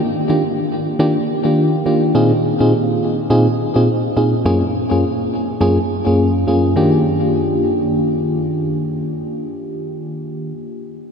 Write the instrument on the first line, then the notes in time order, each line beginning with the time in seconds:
fm electric piano
0.29 D#3 A#3 D4 F4 G4
0.99 D#3 A#3 D4 F4 G4
1.45 D#3 A#3 D4 F4 G4
1.86 D#3 A#3 D4 F4 G4
2.15 A#2 C4 D#4 F4 G#4
2.60 A#2 C4 D#4 F4 G#4
3.30 A#2 C4 D#4 F4 G#4
3.76 A#2 C4 D#4 F4 G#4
4.17 A#2 C4 D#4 F4 G#4
4.45 F#2 A#3 C#4 F4 G#4
4.91 F#2 A#3 C#4 F4 G#4
5.61 F#2 A#3 C#4 F4 G#4
6.06 F#2 A#3 C#4 F4 G#4
6.47 F#2 A#3 C#4 F4 G#4
6.76 D#3 A#3 D4 F4 G4